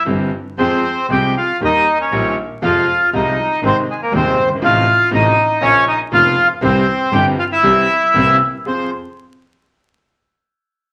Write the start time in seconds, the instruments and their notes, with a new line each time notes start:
0.05 grand piano G1 G2 E3 G3 C4 G4, double bass G1
0.58 double bass F2, grand piano F2 F3 G#3 C4 G#4, bandoneon C4 C5
1.09 double bass C2, grand piano C2 C3 F3 G#3 C4 G#4, bandoneon G4 G5
1.37 bandoneon F4 F5
1.61 double bass D#2, grand piano D#2 D#3 G3 A#3 G4, bandoneon D#4
1.65 bandoneon D#5
2.00 bandoneon C#4 C#5
2.12 double bass A#1, grand piano A#1 A#2 D#3 G3 A#3 G4
2.62 double bass F2, grand piano F2 C3 F3 G#3 F4, bandoneon F4 F5
3.13 double bass C2, grand piano C2 C3 F3 G#3 F4, bandoneon D#4 D#5
3.62 double bass G#1, grand piano G#1 G#2 C3 D#3 G#3 D#4, bandoneon C4
3.67 bandoneon C5
3.90 bandoneon G#3 G#4
4.02 bandoneon A#3 A#4
4.12 grand piano D#1 D#2 C3 D#3 G#3 D#4, double bass D#2, bandoneon C4 C5
4.38 double bass G1
4.43 grand piano F#1
4.49 grand piano G1
4.55 grand piano G#1
4.61 double bass A1, grand piano A1 A2 C3 F3 A3 D#4, bandoneon F4 F5
5.11 grand piano A1 A2 C3 F3 A3 D#4, double bass A1, bandoneon D#4 D#5
5.61 grand piano A#1 A#2 C#3 F3 A#3 F4, double bass A#1, bandoneon C#4 C#5
5.87 bandoneon D#4 D#5
6.12 grand piano F1 F2 C#3 F3 A#3 F4, double bass F1, bandoneon F4 F5
6.61 double bass C2, grand piano C2 C3 E3 G3 C4 G4, bandoneon C4 C5
7.12 double bass G1, grand piano G1 G2 E3 G3 C4 G4, bandoneon G4 G5
7.38 bandoneon F4 F5
7.52 bandoneon E4 E5
7.63 double bass C2, grand piano C2 C3 E3 G3 C4 G4
8.14 double bass C2, grand piano C2 C3 E3 A#3 C4 G4
8.66 double bass F2, grand piano F2 C4 F4 G#4, bandoneon C5